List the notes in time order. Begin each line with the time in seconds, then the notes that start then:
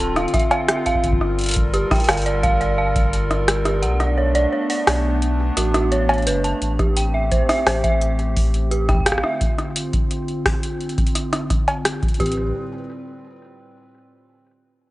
Already playing: D3 C4 F4
0.00 D1
0.16 F5, cross-stick, closed hi-hat
0.28 closed hi-hat
0.34 E5, kick, cross-stick, closed hi-hat
0.40 closed hi-hat
0.51 F5, closed hi-hat, cowbell
0.69 E5, cross-stick, closed hi-hat
0.86 F5, kick, closed hi-hat
0.95 kick
1.04 G1 G3 A4 A#4, kick, closed hi-hat
1.13 kick
1.21 cross-stick
1.38 closed hi-hat
1.41 closed hi-hat
1.43 closed hi-hat
1.46 closed hi-hat
1.48 closed hi-hat
1.51 closed hi-hat
1.53 closed hi-hat
1.56 kick, closed hi-hat
1.73 G4, closed hi-hat
1.91 G5, kick, cross-stick, open hi-hat
1.95 open hi-hat
2.00 open hi-hat
2.04 open hi-hat
2.08 G1 F5, cross-stick, open hi-hat, cowbell
2.13 open hi-hat
2.17 open hi-hat
2.22 open hi-hat
2.26 D5, closed hi-hat
2.43 F5, kick, closed hi-hat
2.61 D5, closed hi-hat
2.78 F5
2.96 kick, closed hi-hat
3.13 closed hi-hat
3.30 cross-stick, closed hi-hat
3.48 cross-stick, closed hi-hat
3.65 G4, cross-stick, closed hi-hat
3.82 B1 A3 B3 D4 F#5, closed hi-hat
4.00 D5, cross-stick, closed hi-hat
4.18 C#5
4.35 D5, closed hi-hat
4.52 C#5
4.70 D5, open hi-hat
4.87 B1, cross-stick, open hi-hat, cowbell
5.22 closed hi-hat
5.57 A1 F#4, cross-stick, closed hi-hat
5.74 F#4, cross-stick, closed hi-hat
5.92 C#5, closed hi-hat
6.09 C#5, closed hi-hat, cowbell
6.14 closed hi-hat
6.18 closed hi-hat
6.23 closed hi-hat
6.27 F#1 B4, closed hi-hat
6.44 A5, closed hi-hat
6.62 A1 A3 C4 G4, closed hi-hat
6.79 G4, kick, cross-stick, closed hi-hat
6.97 G5, closed hi-hat
7.14 E5
7.32 C5, kick, closed hi-hat
7.49 E5, cross-stick, open hi-hat
7.66 A1 C5, cross-stick, open hi-hat, cowbell
7.84 E5, kick, closed hi-hat
8.01 closed hi-hat
8.19 closed hi-hat
8.36 kick, open hi-hat
8.54 closed hi-hat
8.71 G4, closed hi-hat
8.89 G5, kick, cross-stick, closed hi-hat
8.95 kick
9.00 kick
9.06 D3 C4 F4 F5, kick, cross-stick, closed hi-hat
9.12 kick, cross-stick
9.18 kick, cross-stick
9.23 E5, cross-stick
9.41 kick, closed hi-hat
9.58 cross-stick, closed hi-hat
9.76 closed hi-hat
9.93 kick, closed hi-hat
10.11 closed hi-hat
10.28 closed hi-hat
10.46 kick, cross-stick, open hi-hat
10.63 closed hi-hat
10.81 closed hi-hat
10.89 closed hi-hat
10.98 kick, closed hi-hat
11.07 closed hi-hat
11.15 cross-stick, closed hi-hat
11.33 cross-stick, closed hi-hat
11.50 kick, cross-stick, closed hi-hat
11.68 closed hi-hat, cowbell
11.85 cross-stick, closed hi-hat
12.03 kick, closed hi-hat
12.09 closed hi-hat
12.14 closed hi-hat
12.20 A1 G4, kick, closed hi-hat
12.26 closed hi-hat
12.32 closed hi-hat